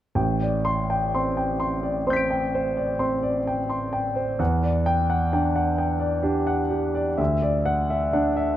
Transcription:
0.15 4.35 A1 soft
0.15 0.55 G5 soft
0.42 0.80 D5 soft
0.65 1.03 C6 soft
0.90 1.27 G5 soft
1.14 1.51 C4 soft
1.14 1.51 C6 soft
1.37 1.74 G5 soft
1.60 1.97 C6 soft
1.83 2.21 D5 soft
2.07 2.44 C4 soft
2.07 2.44 C5 soft
2.07 2.98 C6 soft
2.07 4.37 G6 soft
2.13 4.39 B6 soft
2.13 4.40 D7 soft
2.31 2.68 G5 soft
2.55 2.91 C5 soft
2.77 3.14 D5 soft
2.99 3.37 C4 soft
2.99 3.37 C6 soft
3.23 3.60 D5 soft
3.47 3.84 G5 soft
3.69 4.07 C6 soft
3.93 4.30 G5 soft
4.16 4.39 C5 soft
4.39 7.15 E2 soft
4.39 4.77 F#5 soft
4.63 5.00 D5 soft
4.86 5.23 G5 soft
5.10 5.47 F#5 soft
5.33 5.70 D4 soft
5.33 5.70 G5 soft
5.56 5.93 F#5 soft
5.78 6.16 G5 soft
6.00 6.38 D5 soft
6.23 6.61 D4 soft
6.23 6.61 G4 soft
6.47 6.85 F#5 soft
6.71 7.09 G4 soft
6.95 7.19 D5 soft
7.17 8.55 D2 soft
7.17 7.56 E5 soft
7.42 7.80 D5 soft
7.66 8.03 F#5 soft
7.90 8.27 E5 soft
8.13 8.50 D4 soft
8.13 8.50 F#5 soft
8.37 8.57 E5 soft

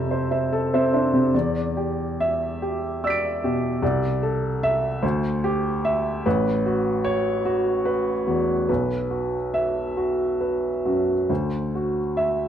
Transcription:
0.00 1.30 F2 medium
0.00 0.23 C3 soft
0.00 0.74 C4 soft
0.00 0.53 A4 soft
0.00 0.11 C5 soft
0.00 0.31 E5 medium
0.11 0.30 C5 soft
0.31 0.49 C5 soft
0.31 0.49 E5 soft
0.53 0.85 A4 medium
0.74 1.05 C4 medium
0.74 0.91 C5 soft
0.74 0.91 E5 medium
0.93 1.13 D4 soft
0.93 1.11 C5 soft
0.93 1.11 E5 soft
1.13 1.34 C3 soft
1.13 1.34 C4 soft
1.34 3.78 E2 soft
1.34 2.02 D5 soft
1.77 2.45 G4 soft
2.20 2.87 E5 medium
2.62 3.27 G4 soft
3.04 3.67 D5 medium
3.04 3.78 E6 soft
3.04 3.80 B6 soft
3.10 3.81 D7 soft
3.44 3.82 B2 soft
3.44 3.83 G4 soft
3.82 5.00 C2 medium
3.82 4.47 D5 soft
4.23 4.87 A4 soft
4.63 5.03 E5 medium
5.03 6.21 D2 medium
5.03 5.68 C5 soft
5.44 6.09 G4 medium
5.85 6.25 E5 medium
6.26 8.65 A1 medium
6.26 6.89 B4 medium
6.66 7.28 F#4 medium
7.04 7.69 C#5 medium
7.45 8.11 F#4 medium
7.85 8.52 B4 medium
8.27 8.69 E2 soft
8.27 8.69 F#4 soft
8.69 11.25 B1 medium
8.69 9.36 B4 soft
9.10 9.79 F#4 soft
9.54 10.23 E5 medium
9.97 10.67 F#4 soft
10.41 11.12 B4 soft
10.86 11.30 F#2 soft
10.86 11.30 F#4 soft
11.30 12.48 D2 soft
11.30 11.99 C5 soft
11.75 12.42 F#4 soft
12.17 12.48 E5 medium

